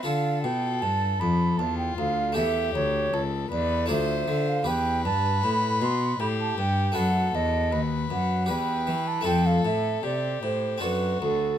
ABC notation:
X:1
M:3/4
L:1/16
Q:1/4=78
K:Ddor
V:1 name="Flute"
f2 g2 a2 b2 a g f2 | e2 ^c4 d2 e3 f | g2 a2 b2 c'2 b a g2 | ^f2 ^d4 f2 g3 a |
g f e2 d2 c2 B2 A2 |]
V:2 name="Violin"
A8 F4 | G4 A2 B2 c4 | B8 G4 | A4 B4 B4 |
A4 G4 ^F4 |]
V:3 name="Harpsichord"
[FA]12 | [A,GA]8 [A,Fd]4 | [GB]12 | [A,^FB]8 [GB]4 |
[A,CA]8 [CDA]4 |]
V:4 name="Harpsichord" clef=bass
D,2 B,,2 G,,2 F,,2 E,,2 D,,2 | E,,2 D,,2 ^C,,2 E,,2 D,,2 D,2 | E,,2 G,,2 A,,2 B,,2 A,,2 G,,2 | ^F,,2 E,,2 ^D,,2 F,,2 E,,2 E,2 |
F,,2 A,,2 C,2 A,,2 ^F,,2 D,,2 |]
V:5 name="Cello" clef=bass
D,2 B,,2 G,,2 F,,2 E,,2 D,,2 | E,,2 D,,2 ^C,,2 E,,2 D,,2 D,2 | E,,2 G,,2 A,,2 B,,2 A,,2 G,,2 | ^F,,2 E,,2 ^D,,2 F,,2 E,,2 E,2 |
F,,2 A,,2 C,2 A,,2 ^F,,2 D,,2 |]